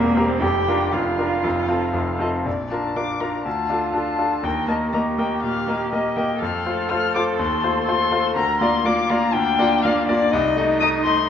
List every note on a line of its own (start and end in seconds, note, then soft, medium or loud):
0.00 0.45 E1 medium
0.00 0.45 E2 medium
0.00 0.30 A#3 medium
0.00 0.16 C4 medium
0.00 0.17 G4 medium
0.00 0.17 A#4 medium
0.00 0.29 A#4 medium
0.16 0.39 C4 soft
0.16 0.40 G4 soft
0.16 0.40 A#4 soft
0.28 0.43 C4 medium
0.28 0.41 C5 medium
0.41 0.67 F1 soft
0.41 0.67 F2 medium
0.41 0.95 G4 medium
0.41 0.94 G5 medium
0.68 0.91 D4 soft
0.68 0.91 F4 soft
0.68 0.91 A#4 soft
0.92 1.18 F1 soft
0.92 1.18 F2 soft
0.92 2.20 F4 medium
0.92 2.20 F5 medium
1.18 1.41 D4 soft
1.18 1.42 F4 soft
1.18 1.42 A#4 soft
1.44 1.69 F1 soft
1.44 1.69 F2 medium
1.68 1.92 C4 soft
1.68 1.92 F4 soft
1.68 1.92 A4 soft
1.93 2.19 F1 soft
1.93 2.19 F2 soft
2.19 2.42 C4 soft
2.19 2.43 F4 soft
2.19 2.43 A4 soft
2.19 2.29 D#5 medium
2.45 2.70 A#1 soft
2.45 2.72 D5 medium
2.71 2.94 D4 soft
2.71 2.94 F4 soft
2.71 2.94 A#4 soft
2.71 2.98 A5 medium
2.96 3.18 D4 soft
2.96 3.19 F4 soft
2.96 3.19 A#4 soft
2.96 3.22 D6 medium
3.20 3.43 D4 soft
3.20 3.43 F4 soft
3.20 3.43 A#4 soft
3.20 3.44 A#5 medium
3.44 3.69 D2 soft
3.44 4.40 F4 medium
3.44 3.93 A5 medium
3.69 3.92 D4 soft
3.69 3.92 F4 soft
3.69 3.92 A4 soft
3.93 4.16 D4 soft
3.93 4.17 F4 soft
3.93 4.17 A4 soft
3.93 4.46 A5 medium
4.18 4.41 D4 soft
4.18 4.42 F4 soft
4.18 4.42 A4 soft
4.43 4.68 D#2 medium
4.43 4.93 A#4 medium
4.43 4.67 G5 medium
4.68 4.91 A#3 soft
4.68 4.91 A#4 soft
4.68 4.91 D#5 soft
4.68 4.76 A5 medium
4.93 5.16 A#3 soft
4.93 6.38 G4 medium
4.93 5.16 A#4 soft
4.93 5.16 D#5 soft
4.93 5.01 A#5 medium
5.18 5.41 A#3 soft
5.18 5.41 A#4 soft
5.18 5.41 D#5 soft
5.18 5.43 G5 medium
5.44 5.67 A#2 soft
5.44 5.92 F5 medium
5.68 5.90 A#3 soft
5.68 5.90 A#4 soft
5.68 5.90 D#5 soft
5.93 6.15 A#3 soft
5.93 6.15 A#4 soft
5.93 6.18 D#5 medium
5.93 6.15 D#5 soft
6.16 6.39 A#3 soft
6.16 6.39 A#4 soft
6.16 6.39 D#5 soft
6.16 6.41 G5 medium
6.41 6.65 F2 medium
6.41 8.33 A4 medium
6.41 6.91 F5 medium
6.66 6.88 A3 soft
6.66 6.88 F4 soft
6.66 6.88 C5 soft
6.90 7.12 A3 soft
6.90 7.13 F4 soft
6.90 7.13 C5 soft
6.90 7.14 F6 medium
7.15 7.37 A3 soft
7.15 7.37 F4 soft
7.15 7.37 C5 soft
7.15 7.23 D6 medium
7.39 7.63 D#2 medium
7.39 7.86 C6 medium
7.63 7.85 A3 soft
7.63 7.86 F4 soft
7.63 7.86 C5 soft
7.87 8.10 A3 soft
7.87 8.10 F4 soft
7.87 8.10 C5 soft
7.87 8.35 C6 medium
8.11 8.34 A3 soft
8.11 8.34 F4 soft
8.11 8.35 C5 soft
8.36 8.60 D2 medium
8.36 8.84 A#4 medium
8.36 8.60 A#5 medium
8.61 8.83 A#3 soft
8.61 8.83 F4 soft
8.61 8.83 D5 medium
8.61 8.87 C6 medium
8.85 9.07 A#3 soft
8.85 9.07 F4 soft
8.85 9.35 F4 medium
8.85 9.07 D5 soft
8.85 9.11 D6 medium
9.10 9.32 A#3 soft
9.10 9.32 F4 soft
9.10 9.32 D5 soft
9.10 9.35 A#5 medium
9.33 9.58 D2 medium
9.33 10.31 D4 medium
9.33 9.84 G5 loud
9.59 9.81 A#3 soft
9.59 9.81 F4 medium
9.59 9.81 D5 medium
9.83 10.06 A#3 medium
9.83 10.06 F4 medium
9.83 10.06 D5 medium
9.83 10.07 F5 medium
10.08 10.30 A#3 soft
10.08 10.30 F4 soft
10.08 10.33 D5 medium
10.08 10.30 D5 medium
10.31 10.56 C2 medium
10.31 11.29 D#4 medium
10.31 10.79 D#5 loud
10.57 10.78 A3 medium
10.57 10.79 D#4 medium
10.57 10.79 D#5 medium
10.80 11.02 A3 soft
10.80 11.03 D#4 medium
10.80 11.03 D#5 medium
10.80 10.88 D#6 loud
11.04 11.26 A3 soft
11.04 11.27 D#4 soft
11.04 11.27 D#5 medium
11.04 11.29 C6 medium